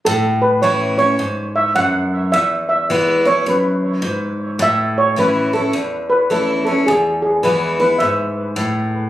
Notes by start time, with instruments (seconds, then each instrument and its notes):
0.05 steel-string acoustic guitar A2, steel pan A4
0.42 steel pan B4
0.62 steel-string acoustic guitar E3 A3 C#4 E4, steel pan C#5
0.98 steel-string acoustic guitar C#4 E4, steel pan C#5
1.19 steel-string acoustic guitar G#2
1.56 steel pan E5
1.75 steel-string acoustic guitar F#2, steel pan F#5
2.32 steel-string acoustic guitar E2, steel pan E5
2.69 steel pan E5
2.90 steel-string acoustic guitar E3 G#3 B3 E4
3.25 steel-string acoustic guitar B3 E4, steel pan C#5
3.46 steel-string acoustic guitar F#2, steel pan B4
4.02 steel-string acoustic guitar G#2
4.59 steel-string acoustic guitar A2, steel pan E5
4.98 steel pan C#5
5.16 steel-string acoustic guitar E3 A3 C#4 E4, steel pan B4
5.53 steel-string acoustic guitar C#4 E4, steel pan A4
5.73 steel-string acoustic guitar E2
6.10 steel pan B4
6.30 steel-string acoustic guitar E3 A3 C#4 E4, steel pan A4
6.65 steel-string acoustic guitar C#4 E4, steel pan A4
6.86 steel-string acoustic guitar E2, steel pan G#4
7.22 steel pan G#4
7.43 steel-string acoustic guitar E3 G#3 B3 E4, steel pan B4
7.80 steel-string acoustic guitar B3 E4, steel pan B4
7.98 steel-string acoustic guitar G#2, steel pan E5
8.56 steel-string acoustic guitar A2